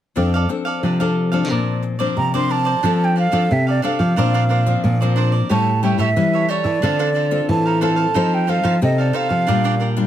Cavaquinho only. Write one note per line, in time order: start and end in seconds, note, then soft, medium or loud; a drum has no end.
0.16 0.32 D4 soft
0.16 0.32 A4 soft
0.16 0.32 D5 soft
0.16 0.32 F5 soft
0.34 0.49 A4 medium
0.34 0.49 D5 medium
0.34 0.49 F5 medium
0.49 muted cavaquinho stroke soft
0.65 0.82 A4 soft
0.65 0.82 D5 soft
0.65 0.81 F5 medium
0.83 0.99 D4 soft
0.83 0.99 A4 soft
0.83 0.99 D5 soft
0.83 0.99 F5 soft
1.00 1.32 A4 soft
1.00 1.31 D5 soft
1.00 1.30 F5 medium
1.32 1.49 A4 soft
1.32 1.48 D5 soft
1.32 1.48 F5 soft
1.50 1.81 D4 soft
1.50 1.82 A#4 soft
1.50 1.82 C5 soft
1.50 1.83 D5 soft
1.82 muted cavaquinho stroke soft
1.99 2.33 A#4 soft
1.99 2.32 C5 medium
1.99 2.32 D5 medium
2.34 2.49 A#4 soft
2.34 2.50 C5 medium
2.34 2.49 D5 medium
2.49 2.65 D4 soft
2.49 2.66 A#4 soft
2.49 2.65 C5 soft
2.49 2.64 D5 soft
2.65 2.83 A#4 soft
2.65 2.82 C5 medium
2.65 2.81 D5 medium
2.83 3.14 D4 medium
2.83 3.16 A4 medium
2.83 3.16 D5 medium
2.83 3.16 F5 medium
3.16 3.30 D4 soft
3.16 3.31 A4 soft
3.16 3.32 D5 soft
3.16 3.32 F5 medium
3.32 3.42 D4 medium
3.32 3.42 A4 medium
3.32 3.42 D5 medium
3.32 3.42 F5 medium
3.67 3.82 A4 soft
3.67 3.83 D5 soft
3.67 3.82 F5 soft
3.82 3.98 D4 medium
3.82 3.99 A4 medium
3.82 3.99 D5 medium
3.82 3.98 F5 medium
3.99 4.16 A4 soft
3.99 4.16 D5 soft
3.99 4.15 F5 soft
4.16 4.32 D4 medium
4.16 4.32 A#4 medium
4.16 4.33 C5 medium
4.16 4.33 D5 medium
4.34 4.43 D4 medium
4.34 4.43 A#4 medium
4.34 4.43 C5 medium
4.34 4.43 D5 medium
4.49 4.98 D4 soft
4.49 4.99 A#4 soft
4.49 4.99 C5 soft
4.49 4.99 D5 soft
5.01 5.16 A#4 soft
5.01 5.16 C5 soft
5.01 5.16 D5 soft
5.16 5.32 D4 medium
5.16 5.32 A#4 medium
5.16 5.32 C5 medium
5.16 5.31 D5 medium
5.32 5.49 A#4 soft
5.32 5.49 C5 soft
5.32 5.48 D5 soft
5.49 5.81 G4 medium
5.49 5.82 A4 medium
5.49 5.83 C#5 medium
5.49 5.83 E5 medium
5.83 5.97 G4 soft
5.83 5.98 A4 soft
5.83 5.98 C#5 soft
5.83 5.99 E5 soft
5.99 6.08 G4 medium
5.99 6.09 A4 medium
5.99 6.09 C#5 medium
5.99 6.09 E5 medium
6.33 6.48 A4 soft
6.33 6.49 C#5 soft
6.33 6.49 E5 soft
6.49 6.65 G4 medium
6.49 6.65 A4 medium
6.49 6.64 C#5 medium
6.49 6.63 E5 medium
6.64 6.82 A4 soft
6.64 6.81 C#5 soft
6.64 6.81 E5 soft
6.82 6.98 D4 medium
6.82 6.98 A4 medium
6.82 6.99 C5 medium
6.82 6.99 F5 medium
6.99 7.09 D4 medium
6.99 7.09 A4 medium
6.99 7.09 C5 medium
6.99 7.09 F5 medium
7.14 7.64 D4 soft
7.14 7.64 A4 soft
7.14 7.65 C5 soft
7.14 7.64 F5 soft
7.65 7.80 A4 soft
7.65 7.81 C5 soft
7.65 7.81 F5 soft
7.81 7.97 D4 medium
7.81 7.97 A4 medium
7.81 7.96 C5 medium
7.81 7.95 F5 medium
7.96 8.14 A4 soft
7.96 8.14 C5 soft
7.96 8.13 F5 soft
8.14 8.46 D#4 medium
8.14 8.47 A4 medium
8.14 8.47 C5 medium
8.14 8.48 F5 medium
8.47 8.62 D#4 soft
8.47 8.63 A4 soft
8.47 8.63 C5 soft
8.47 8.64 F5 soft
8.63 8.74 D#4 medium
8.63 8.74 A4 medium
8.63 8.74 C5 medium
8.63 8.74 F5 medium
8.98 9.13 A4 soft
8.98 9.14 C5 soft
8.98 9.14 F5 soft
9.13 9.30 D#4 medium
9.13 9.30 A4 medium
9.13 9.29 C5 medium
9.13 9.28 F5 medium
9.29 9.47 A4 soft
9.29 9.46 C5 soft
9.29 9.46 F5 soft
9.47 9.63 D4 medium
9.47 9.63 A#4 medium
9.47 9.64 D5 medium
9.47 9.64 G5 medium
9.64 9.74 D4 medium
9.64 9.74 A#4 medium
9.64 9.74 D5 medium
9.64 9.74 G5 medium
9.80 10.07 D4 soft
9.80 10.07 A#4 soft
9.80 10.07 D5 soft
9.80 10.07 G5 soft